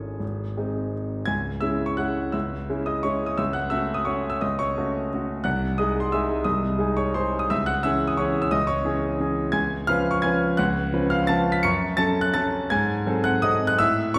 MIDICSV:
0, 0, Header, 1, 2, 480
1, 0, Start_track
1, 0, Key_signature, 4, "minor"
1, 0, Tempo, 356295
1, 290, Time_signature, 3, 2, 24, 8
1, 2687, Tempo, 348432
1, 6527, Tempo, 335383
1, 8927, Tempo, 343446
1, 13727, Tempo, 349650
1, 16607, Tempo, 359712
1, 19534, End_track
2, 0, Start_track
2, 0, Title_t, "Grand piano"
2, 0, Program_c, 0, 0
2, 0, Control_c, 0, 64, 127
2, 0, Note_on_c, 0, 32, 45
2, 0, Note_on_c, 0, 56, 35
2, 0, Note_on_c, 0, 61, 31
2, 0, Note_on_c, 0, 64, 36
2, 0, Note_on_c, 0, 68, 48
2, 0, Note_on_c, 0, 69, 53
2, 228, Note_off_c, 0, 56, 0
2, 231, Note_off_c, 0, 61, 0
2, 235, Note_off_c, 0, 64, 0
2, 272, Note_off_c, 0, 32, 0
2, 272, Note_on_c, 0, 32, 44
2, 319, Control_c, 0, 64, 0
2, 323, Note_off_c, 0, 69, 0
2, 568, Control_c, 0, 64, 127
2, 744, Note_off_c, 0, 32, 0
2, 771, Note_on_c, 0, 60, 34
2, 777, Note_on_c, 0, 56, 37
2, 783, Note_on_c, 0, 63, 36
2, 1238, Note_off_c, 0, 68, 0
2, 1677, Note_off_c, 0, 60, 0
2, 1680, Note_off_c, 0, 56, 0
2, 1683, Note_off_c, 0, 63, 0
2, 1691, Note_on_c, 0, 92, 88
2, 1717, Note_on_c, 0, 37, 59
2, 1718, Note_on_c, 0, 80, 60
2, 1751, Control_c, 0, 64, 0
2, 2001, Control_c, 0, 64, 127
2, 2163, Note_off_c, 0, 80, 0
2, 2163, Note_on_c, 0, 88, 84
2, 2178, Note_on_c, 0, 76, 65
2, 2179, Note_on_c, 0, 56, 44
2, 2182, Note_off_c, 0, 37, 0
2, 2183, Note_off_c, 0, 92, 0
2, 2188, Note_on_c, 0, 61, 48
2, 2190, Note_on_c, 0, 64, 52
2, 2491, Note_off_c, 0, 76, 0
2, 2507, Note_off_c, 0, 88, 0
2, 2508, Note_on_c, 0, 85, 76
2, 2625, Note_off_c, 0, 56, 0
2, 2630, Note_off_c, 0, 61, 0
2, 2631, Note_off_c, 0, 64, 0
2, 2655, Note_on_c, 0, 90, 72
2, 2667, Note_on_c, 0, 56, 41
2, 2667, Note_on_c, 0, 78, 62
2, 2674, Note_on_c, 0, 61, 38
2, 2677, Note_off_c, 0, 85, 0
2, 2680, Note_on_c, 0, 64, 48
2, 3104, Note_off_c, 0, 56, 0
2, 3107, Note_off_c, 0, 61, 0
2, 3111, Note_off_c, 0, 64, 0
2, 3118, Note_off_c, 0, 78, 0
2, 3140, Note_on_c, 0, 88, 68
2, 3146, Note_off_c, 0, 90, 0
2, 3156, Note_on_c, 0, 37, 59
2, 3161, Note_on_c, 0, 76, 52
2, 3190, Control_c, 0, 64, 0
2, 3420, Control_c, 0, 64, 127
2, 3626, Note_off_c, 0, 37, 0
2, 3653, Note_on_c, 0, 56, 49
2, 3660, Note_on_c, 0, 64, 51
2, 3661, Note_on_c, 0, 61, 47
2, 3838, Note_off_c, 0, 76, 0
2, 3879, Note_off_c, 0, 88, 0
2, 3879, Note_on_c, 0, 87, 70
2, 3893, Note_on_c, 0, 75, 55
2, 4093, Note_off_c, 0, 56, 0
2, 4097, Note_off_c, 0, 61, 0
2, 4097, Note_off_c, 0, 64, 0
2, 4113, Note_on_c, 0, 85, 81
2, 4121, Note_off_c, 0, 75, 0
2, 4128, Note_on_c, 0, 73, 57
2, 4131, Note_off_c, 0, 87, 0
2, 4132, Note_on_c, 0, 56, 41
2, 4141, Note_on_c, 0, 61, 37
2, 4143, Note_on_c, 0, 64, 52
2, 4431, Note_off_c, 0, 73, 0
2, 4436, Note_on_c, 0, 87, 71
2, 4446, Note_off_c, 0, 85, 0
2, 4561, Note_off_c, 0, 56, 0
2, 4566, Note_off_c, 0, 61, 0
2, 4567, Note_off_c, 0, 64, 0
2, 4589, Note_on_c, 0, 88, 78
2, 4595, Note_on_c, 0, 76, 59
2, 4600, Note_off_c, 0, 87, 0
2, 4601, Note_on_c, 0, 37, 63
2, 4636, Control_c, 0, 64, 0
2, 4807, Note_on_c, 0, 90, 73
2, 4815, Note_off_c, 0, 76, 0
2, 4822, Note_on_c, 0, 78, 64
2, 4829, Note_off_c, 0, 88, 0
2, 4842, Control_c, 0, 64, 127
2, 5036, Note_on_c, 0, 88, 86
2, 5050, Note_off_c, 0, 78, 0
2, 5051, Note_on_c, 0, 57, 52
2, 5054, Note_on_c, 0, 76, 71
2, 5056, Note_off_c, 0, 37, 0
2, 5059, Note_off_c, 0, 90, 0
2, 5059, Note_on_c, 0, 61, 46
2, 5063, Note_on_c, 0, 66, 52
2, 5365, Note_off_c, 0, 76, 0
2, 5372, Note_on_c, 0, 87, 79
2, 5380, Note_off_c, 0, 88, 0
2, 5501, Note_off_c, 0, 57, 0
2, 5505, Note_off_c, 0, 61, 0
2, 5507, Note_off_c, 0, 66, 0
2, 5520, Note_on_c, 0, 85, 78
2, 5534, Note_on_c, 0, 73, 62
2, 5536, Note_on_c, 0, 57, 40
2, 5542, Note_on_c, 0, 61, 44
2, 5547, Note_on_c, 0, 66, 44
2, 5549, Note_off_c, 0, 87, 0
2, 5846, Note_off_c, 0, 73, 0
2, 5858, Note_on_c, 0, 88, 76
2, 5862, Note_off_c, 0, 85, 0
2, 5979, Note_off_c, 0, 57, 0
2, 5982, Note_off_c, 0, 61, 0
2, 5985, Note_off_c, 0, 66, 0
2, 6017, Note_on_c, 0, 87, 76
2, 6022, Note_on_c, 0, 75, 55
2, 6027, Note_on_c, 0, 37, 60
2, 6029, Note_off_c, 0, 88, 0
2, 6065, Control_c, 0, 64, 0
2, 6255, Note_off_c, 0, 75, 0
2, 6259, Control_c, 0, 64, 127
2, 6260, Note_on_c, 0, 85, 93
2, 6270, Note_off_c, 0, 87, 0
2, 6282, Note_on_c, 0, 73, 63
2, 6505, Note_off_c, 0, 37, 0
2, 6517, Note_on_c, 0, 57, 52
2, 6519, Note_on_c, 0, 61, 49
2, 6522, Note_on_c, 0, 66, 53
2, 6965, Note_off_c, 0, 57, 0
2, 6966, Note_off_c, 0, 61, 0
2, 6967, Note_off_c, 0, 66, 0
2, 7026, Note_on_c, 0, 57, 45
2, 7038, Note_on_c, 0, 61, 40
2, 7040, Note_on_c, 0, 66, 45
2, 7435, Note_off_c, 0, 73, 0
2, 7448, Note_off_c, 0, 57, 0
2, 7455, Note_off_c, 0, 61, 0
2, 7456, Note_off_c, 0, 66, 0
2, 7465, Note_on_c, 0, 90, 88
2, 7475, Note_on_c, 0, 78, 69
2, 7481, Note_off_c, 0, 85, 0
2, 7482, Note_on_c, 0, 36, 65
2, 7518, Control_c, 0, 64, 0
2, 7734, Control_c, 0, 64, 127
2, 7918, Note_off_c, 0, 78, 0
2, 7941, Note_off_c, 0, 36, 0
2, 7946, Note_off_c, 0, 90, 0
2, 7956, Note_on_c, 0, 87, 87
2, 7975, Note_on_c, 0, 56, 50
2, 7975, Note_on_c, 0, 75, 71
2, 7978, Note_on_c, 0, 63, 50
2, 7988, Note_on_c, 0, 68, 53
2, 8271, Note_off_c, 0, 75, 0
2, 8273, Note_on_c, 0, 84, 77
2, 8283, Note_off_c, 0, 87, 0
2, 8410, Note_off_c, 0, 56, 0
2, 8412, Note_off_c, 0, 63, 0
2, 8417, Note_off_c, 0, 68, 0
2, 8444, Note_off_c, 0, 84, 0
2, 8445, Note_on_c, 0, 88, 80
2, 8461, Note_on_c, 0, 56, 47
2, 8464, Note_on_c, 0, 76, 65
2, 8471, Note_on_c, 0, 63, 45
2, 8473, Note_on_c, 0, 68, 51
2, 8886, Note_off_c, 0, 56, 0
2, 8891, Note_off_c, 0, 63, 0
2, 8892, Note_off_c, 0, 68, 0
2, 8901, Note_off_c, 0, 76, 0
2, 8906, Note_on_c, 0, 87, 83
2, 8920, Note_on_c, 0, 36, 63
2, 8925, Note_off_c, 0, 88, 0
2, 8929, Note_on_c, 0, 75, 52
2, 8954, Control_c, 0, 64, 0
2, 9155, Control_c, 0, 64, 127
2, 9382, Note_on_c, 0, 56, 50
2, 9387, Note_off_c, 0, 36, 0
2, 9393, Note_on_c, 0, 63, 53
2, 9406, Note_on_c, 0, 68, 52
2, 9604, Note_off_c, 0, 75, 0
2, 9636, Note_on_c, 0, 85, 84
2, 9644, Note_off_c, 0, 87, 0
2, 9650, Note_on_c, 0, 73, 65
2, 9845, Note_off_c, 0, 56, 0
2, 9851, Note_off_c, 0, 63, 0
2, 9858, Note_off_c, 0, 68, 0
2, 9885, Note_on_c, 0, 84, 82
2, 9888, Note_off_c, 0, 73, 0
2, 9893, Note_on_c, 0, 56, 44
2, 9898, Note_on_c, 0, 72, 67
2, 9899, Note_off_c, 0, 85, 0
2, 9902, Note_on_c, 0, 63, 44
2, 9910, Note_on_c, 0, 68, 45
2, 10214, Note_off_c, 0, 72, 0
2, 10231, Note_off_c, 0, 84, 0
2, 10233, Note_on_c, 0, 87, 84
2, 10343, Note_off_c, 0, 56, 0
2, 10348, Note_off_c, 0, 63, 0
2, 10353, Note_off_c, 0, 68, 0
2, 10384, Note_on_c, 0, 88, 95
2, 10390, Note_on_c, 0, 76, 79
2, 10394, Note_on_c, 0, 37, 67
2, 10396, Note_off_c, 0, 87, 0
2, 10426, Control_c, 0, 64, 0
2, 10610, Note_on_c, 0, 90, 94
2, 10611, Note_off_c, 0, 76, 0
2, 10617, Note_on_c, 0, 78, 75
2, 10625, Note_off_c, 0, 88, 0
2, 10652, Control_c, 0, 64, 127
2, 10844, Note_off_c, 0, 78, 0
2, 10846, Note_on_c, 0, 88, 98
2, 10852, Note_off_c, 0, 37, 0
2, 10857, Note_on_c, 0, 52, 51
2, 10858, Note_off_c, 0, 90, 0
2, 10859, Note_on_c, 0, 76, 80
2, 10866, Note_on_c, 0, 61, 56
2, 10875, Note_on_c, 0, 68, 59
2, 11166, Note_off_c, 0, 76, 0
2, 11182, Note_off_c, 0, 88, 0
2, 11186, Note_on_c, 0, 87, 84
2, 11304, Note_off_c, 0, 52, 0
2, 11308, Note_off_c, 0, 61, 0
2, 11313, Note_off_c, 0, 68, 0
2, 11324, Note_on_c, 0, 85, 87
2, 11339, Note_on_c, 0, 52, 48
2, 11342, Note_on_c, 0, 61, 52
2, 11342, Note_on_c, 0, 73, 69
2, 11347, Note_on_c, 0, 68, 51
2, 11355, Note_off_c, 0, 87, 0
2, 11648, Note_off_c, 0, 73, 0
2, 11663, Note_off_c, 0, 85, 0
2, 11664, Note_on_c, 0, 88, 90
2, 11774, Note_off_c, 0, 52, 0
2, 11775, Note_off_c, 0, 61, 0
2, 11778, Note_off_c, 0, 68, 0
2, 11796, Note_on_c, 0, 87, 97
2, 11810, Note_on_c, 0, 37, 68
2, 11812, Note_on_c, 0, 75, 78
2, 11824, Note_off_c, 0, 88, 0
2, 11856, Control_c, 0, 64, 0
2, 12019, Note_on_c, 0, 85, 93
2, 12032, Note_off_c, 0, 75, 0
2, 12034, Note_on_c, 0, 73, 73
2, 12041, Note_off_c, 0, 87, 0
2, 12064, Control_c, 0, 64, 127
2, 12267, Note_on_c, 0, 52, 49
2, 12269, Note_on_c, 0, 61, 55
2, 12273, Note_off_c, 0, 37, 0
2, 12280, Note_on_c, 0, 68, 62
2, 12722, Note_off_c, 0, 52, 0
2, 12723, Note_off_c, 0, 61, 0
2, 12729, Note_off_c, 0, 68, 0
2, 12748, Note_on_c, 0, 52, 48
2, 12757, Note_on_c, 0, 61, 46
2, 12768, Note_on_c, 0, 68, 53
2, 13183, Note_off_c, 0, 52, 0
2, 13183, Note_off_c, 0, 73, 0
2, 13188, Note_off_c, 0, 61, 0
2, 13194, Note_off_c, 0, 68, 0
2, 13205, Note_on_c, 0, 92, 98
2, 13217, Note_on_c, 0, 80, 71
2, 13218, Note_on_c, 0, 37, 62
2, 13231, Note_off_c, 0, 85, 0
2, 13272, Control_c, 0, 64, 0
2, 13506, Control_c, 0, 64, 127
2, 13676, Note_off_c, 0, 80, 0
2, 13697, Note_off_c, 0, 37, 0
2, 13699, Note_on_c, 0, 89, 116
2, 13705, Note_off_c, 0, 92, 0
2, 13715, Note_on_c, 0, 77, 73
2, 13718, Note_on_c, 0, 61, 58
2, 13719, Note_on_c, 0, 53, 60
2, 13723, Note_on_c, 0, 71, 64
2, 14021, Note_off_c, 0, 77, 0
2, 14021, Note_on_c, 0, 85, 90
2, 14036, Note_off_c, 0, 89, 0
2, 14159, Note_off_c, 0, 61, 0
2, 14160, Note_off_c, 0, 53, 0
2, 14162, Note_off_c, 0, 71, 0
2, 14176, Note_on_c, 0, 92, 94
2, 14191, Note_on_c, 0, 80, 76
2, 14198, Note_off_c, 0, 85, 0
2, 14199, Note_on_c, 0, 53, 50
2, 14204, Note_on_c, 0, 61, 53
2, 14206, Note_on_c, 0, 71, 61
2, 14632, Note_off_c, 0, 53, 0
2, 14634, Note_off_c, 0, 61, 0
2, 14635, Note_off_c, 0, 71, 0
2, 14642, Note_off_c, 0, 80, 0
2, 14661, Note_on_c, 0, 90, 102
2, 14668, Note_off_c, 0, 92, 0
2, 14682, Note_on_c, 0, 78, 69
2, 14683, Note_on_c, 0, 37, 81
2, 14708, Control_c, 0, 64, 0
2, 14887, Control_c, 0, 64, 127
2, 15148, Note_off_c, 0, 37, 0
2, 15155, Note_on_c, 0, 53, 59
2, 15157, Note_on_c, 0, 61, 62
2, 15160, Note_on_c, 0, 71, 63
2, 15357, Note_off_c, 0, 78, 0
2, 15385, Note_on_c, 0, 89, 100
2, 15398, Note_off_c, 0, 90, 0
2, 15403, Note_on_c, 0, 77, 85
2, 15604, Note_off_c, 0, 53, 0
2, 15605, Note_off_c, 0, 61, 0
2, 15607, Note_off_c, 0, 71, 0
2, 15620, Note_on_c, 0, 93, 103
2, 15637, Note_off_c, 0, 77, 0
2, 15643, Note_on_c, 0, 53, 56
2, 15643, Note_on_c, 0, 81, 80
2, 15646, Note_off_c, 0, 89, 0
2, 15646, Note_on_c, 0, 61, 53
2, 15659, Note_on_c, 0, 71, 57
2, 15953, Note_off_c, 0, 81, 0
2, 15961, Note_on_c, 0, 95, 93
2, 15965, Note_off_c, 0, 93, 0
2, 16084, Note_off_c, 0, 53, 0
2, 16085, Note_off_c, 0, 61, 0
2, 16093, Note_off_c, 0, 71, 0
2, 16110, Note_on_c, 0, 97, 110
2, 16129, Note_off_c, 0, 95, 0
2, 16132, Note_on_c, 0, 85, 87
2, 16135, Note_on_c, 0, 42, 73
2, 16168, Control_c, 0, 64, 0
2, 16401, Control_c, 0, 64, 127
2, 16570, Note_off_c, 0, 85, 0
2, 16576, Note_on_c, 0, 93, 115
2, 16590, Note_on_c, 0, 54, 61
2, 16591, Note_off_c, 0, 42, 0
2, 16592, Note_off_c, 0, 97, 0
2, 16594, Note_on_c, 0, 81, 88
2, 16598, Note_on_c, 0, 61, 59
2, 16608, Note_on_c, 0, 69, 70
2, 16895, Note_off_c, 0, 81, 0
2, 16903, Note_on_c, 0, 90, 102
2, 16910, Note_off_c, 0, 93, 0
2, 17031, Note_off_c, 0, 54, 0
2, 17036, Note_off_c, 0, 61, 0
2, 17041, Note_off_c, 0, 69, 0
2, 17067, Note_on_c, 0, 93, 104
2, 17074, Note_on_c, 0, 81, 81
2, 17077, Note_on_c, 0, 61, 59
2, 17078, Note_off_c, 0, 90, 0
2, 17079, Note_on_c, 0, 54, 54
2, 17086, Note_on_c, 0, 69, 64
2, 17510, Note_off_c, 0, 61, 0
2, 17511, Note_off_c, 0, 54, 0
2, 17515, Note_off_c, 0, 69, 0
2, 17522, Note_off_c, 0, 81, 0
2, 17553, Note_off_c, 0, 93, 0
2, 17555, Note_on_c, 0, 92, 99
2, 17571, Note_on_c, 0, 44, 83
2, 17574, Note_on_c, 0, 80, 86
2, 17589, Control_c, 0, 64, 0
2, 17792, Control_c, 0, 64, 127
2, 18024, Note_off_c, 0, 44, 0
2, 18042, Note_on_c, 0, 54, 62
2, 18048, Note_on_c, 0, 60, 64
2, 18050, Note_on_c, 0, 69, 65
2, 18236, Note_off_c, 0, 80, 0
2, 18271, Note_on_c, 0, 90, 106
2, 18276, Note_off_c, 0, 92, 0
2, 18289, Note_on_c, 0, 78, 80
2, 18488, Note_off_c, 0, 54, 0
2, 18491, Note_off_c, 0, 60, 0
2, 18492, Note_off_c, 0, 69, 0
2, 18516, Note_on_c, 0, 87, 110
2, 18520, Note_off_c, 0, 78, 0
2, 18529, Note_off_c, 0, 90, 0
2, 18529, Note_on_c, 0, 54, 59
2, 18532, Note_on_c, 0, 75, 78
2, 18535, Note_on_c, 0, 60, 54
2, 18542, Note_on_c, 0, 69, 61
2, 18838, Note_off_c, 0, 75, 0
2, 18851, Note_on_c, 0, 90, 113
2, 18853, Note_off_c, 0, 87, 0
2, 18968, Note_off_c, 0, 54, 0
2, 18971, Note_off_c, 0, 60, 0
2, 18975, Note_off_c, 0, 69, 0
2, 19002, Note_on_c, 0, 88, 120
2, 19013, Note_off_c, 0, 90, 0
2, 19017, Note_on_c, 0, 45, 76
2, 19020, Note_on_c, 0, 76, 92
2, 19042, Control_c, 0, 64, 0
2, 19235, Control_c, 0, 64, 127
2, 19456, Note_off_c, 0, 76, 0
2, 19474, Note_off_c, 0, 45, 0
2, 19479, Note_on_c, 0, 85, 121
2, 19480, Note_off_c, 0, 88, 0
2, 19493, Note_on_c, 0, 52, 66
2, 19534, Note_off_c, 0, 52, 0
2, 19534, Note_off_c, 0, 85, 0
2, 19534, End_track
0, 0, End_of_file